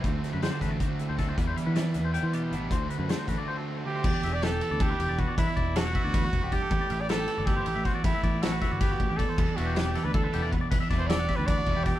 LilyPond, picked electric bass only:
\new Staff \with { instrumentName = "Picked electric bass" } { \clef bass \time 7/8 \key e \minor \tempo 4 = 157 d,8 r16 fis,8 r16 a,,8 r8. d,8. | e,8 r16 e8. e,8. e8. a,,8 | d,8 r16 fis,8 r16 a,,16 r4. r16 | e,,16 r16 e,,4~ e,,16 d,8. e,,16 e,,8 r16 |
e,,16 r16 e,,4~ e,,16 d,8. e,,16 e,,8 r16 | a,,16 r16 a,,4~ a,,16 g,,8. a,,16 a,,8 r16 | a,,16 r16 a,,4~ a,,16 g,,8. a,,16 a,,8 r16 | e,,16 r16 e,,4~ e,,16 d,8. e,,16 e,,8 r16 |
e,,16 r16 e,,4~ e,,16 d,8. e,,16 e,,8 r16 | }